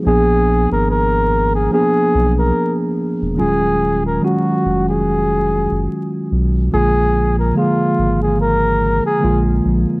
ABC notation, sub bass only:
X:1
M:4/4
L:1/16
Q:"Swing 16ths" 1/4=72
K:Ebm
V:1 name="Sub bass" clef=bass
B,,,3 A,,,4- A,,, z2 C,,2 z3 _F,,, | E,,,4 z2 F,,,4- F,,, G,,, z2 C,,2 | B,,,4 z2 A,,,4- A,,, z B,,,2 B,,, z |]